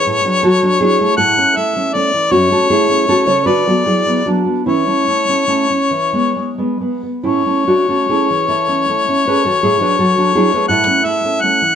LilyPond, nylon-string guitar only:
\new Staff \with { instrumentName = "Nylon-string guitar" } { \time 6/8 \key a \major \tempo 4. = 52 << { <gis' b'>8 <fis' a'>8 <e' gis'>8 <e' a'>4. | <cis' fis'>16 <fis' a'>16 <e' gis'>8 <fis' a'>16 <a' cis''>16 <fis' b'>16 <fis' a'>16 <e' gis'>8 <d' fis'>8 | <cis' e'>2~ <cis' e'>8 r8 | <cis' e'>8 <d' fis'>16 <fis' a'>16 <e' gis'>8 <e' a'>4 <gis' b'>16 <fis' a'>16 |
<e' gis'>16 <gis' b'>16 <fis' a'>8 <e' gis'>16 <gis' b'>16 <e' a'>4. | } \\ { a,16 <fis d'>16 fis16 <fis d'>16 <fis d'>16 a16 a,16 <a cis'>16 a16 <a cis'>16 <a cis'>16 e16 | fis,16 <a cis'>16 a16 <a cis'>16 <a cis'>16 cis16 d16 <fis b>16 fis16 <fis b>16 <fis b>16 b16 | e16 <a cis'>16 a16 <a cis'>16 <a cis'>16 cis'16 e16 <gis b>16 gis16 <gis b>16 <gis b>16 b16 | a,16 <a cis'>16 a16 <a cis'>16 <a cis'>16 e8 <a cis'>16 a16 <a cis'>16 <a cis'>16 e16 |
a,16 <fis d'>16 fis16 <fis d'>16 <fis d'>16 a16 a,16 <a cis'>16 a16 <a cis'>16 <a cis'>16 e16 | } >> }